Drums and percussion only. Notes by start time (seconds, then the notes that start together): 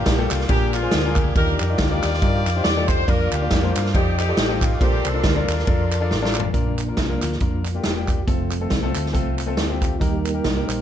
0.06 kick, snare, ride
0.30 snare, clap, ride
0.40 snare
0.49 kick, ride
0.74 clap, ride
0.91 snare, ride
1.16 kick, clap, ride
1.35 kick, ride
1.59 clap, ride
1.78 kick, snare, ride
2.03 snare, clap, ride
2.13 snare
2.22 kick, ride
2.47 clap, ride
2.65 snare, ride
2.89 kick, clap, ride
3.08 kick, ride
3.32 clap, ride
3.51 kick, snare, ride
3.75 snare, clap, ride
3.86 snare
3.95 kick, ride
4.19 clap, ride
4.37 snare, ride
4.61 kick, clap, ride
4.81 kick, ride
5.05 clap, ride
5.24 kick, snare, ride
5.48 snare, clap, ride
5.59 snare
5.67 kick, ride
5.92 clap, ride
6.11 snare
6.25 snare
6.35 clap
6.40 floor tom
6.54 kick, closed hi-hat
6.78 clap, closed hi-hat
6.97 kick, snare, closed hi-hat
7.22 snare, clap, closed hi-hat
7.32 snare
7.40 kick, closed hi-hat
7.65 clap, closed hi-hat
7.84 snare, closed hi-hat
8.08 kick, clap, closed hi-hat
8.27 kick, closed hi-hat
8.51 clap, closed hi-hat
8.70 kick, snare, closed hi-hat
8.95 clap, closed hi-hat
9.06 snare
9.14 kick, closed hi-hat
9.39 clap, closed hi-hat
9.57 snare, closed hi-hat
9.82 kick, clap, closed hi-hat
10.01 kick, closed hi-hat
10.25 clap, closed hi-hat
10.44 kick, snare, closed hi-hat
10.70 clap, closed hi-hat